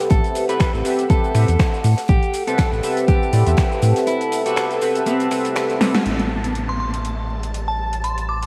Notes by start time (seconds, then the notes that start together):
Already playing: C4 G4 A4 B4 E5 F#5
0.00 shaker
0.10 A1 A4, kick, closed hi-hat, shaker
0.24 closed hi-hat, shaker
0.35 closed hi-hat, open hi-hat, shaker
0.49 C4 G4 A4 B4 E5, closed hi-hat, shaker
0.60 finger snap, kick, snare, closed hi-hat, shaker
0.74 A1, shaker
0.85 C4 G4 A4 B4 E5, closed hi-hat, open hi-hat, shaker
0.99 closed hi-hat, shaker
1.09 C4 G4 A4 B4 E5, kick, closed hi-hat, shaker
1.24 closed hi-hat, shaker
1.34 A2 C4 G4 A4 B4 E5, finger snap, closed hi-hat, open hi-hat, shaker
1.48 E2, closed hi-hat, shaker
1.59 finger snap, kick, snare, closed hi-hat, shaker
1.74 shaker
1.84 A2, open hi-hat, shaker
1.97 snare, closed hi-hat, shaker
2.08 A1 G4 A5, kick, closed hi-hat, shaker
2.23 closed hi-hat, shaker
2.33 closed hi-hat, open hi-hat, shaker
2.47 C4 G4 A4 B4 E5, closed hi-hat, shaker
2.58 finger snap, kick, snare, closed hi-hat, shaker
2.72 A1, shaker
2.83 C4 G4 A4 B4 E5, closed hi-hat, open hi-hat, shaker
2.97 closed hi-hat, shaker
3.08 G4, kick, closed hi-hat, shaker
3.22 shaker
3.33 A2 C4 G4 A4 B4 D5, closed hi-hat, open hi-hat, shaker
3.46 E2 C4 G4 A4 B4 E5, closed hi-hat, shaker
3.57 finger snap, kick, snare, closed hi-hat, shaker
3.72 shaker
3.82 A2, closed hi-hat, open hi-hat, shaker
3.96 snare, closed hi-hat, shaker
4.07 E4, closed hi-hat, shaker
4.21 closed hi-hat, shaker
4.32 closed hi-hat, open hi-hat, shaker
4.46 C4 F#4 G4 A4 B4 E5, closed hi-hat, shaker
4.56 finger snap, snare, closed hi-hat, shaker
4.71 closed hi-hat, shaker
4.81 C4 G4 A4 B4 E5, closed hi-hat, open hi-hat, shaker
4.95 closed hi-hat, shaker
5.06 C4 G4 A4 B4 E5, closed hi-hat, shaker
5.20 closed hi-hat, shaker
5.31 C4 G4 A4 B4 E5, finger snap, closed hi-hat, open hi-hat, shaker
5.45 closed hi-hat, shaker
5.56 finger snap, snare, closed hi-hat, shaker
5.70 closed hi-hat, shaker
5.81 C4 G4 A4 B4 E5, snare, closed hi-hat, open hi-hat, shaker
5.95 snare, closed hi-hat, open hi-hat, shaker
6.06 A1 A3 G4 C5 A5, closed hi-hat, downlifter
6.19 closed hi-hat
6.44 closed hi-hat
6.55 closed hi-hat
6.69 C6
6.80 C6
6.94 closed hi-hat
7.05 closed hi-hat
7.43 closed hi-hat
7.54 closed hi-hat
7.68 A5
7.93 closed hi-hat
8.04 C6, closed hi-hat
8.18 closed hi-hat
8.29 D6
8.42 closed hi-hat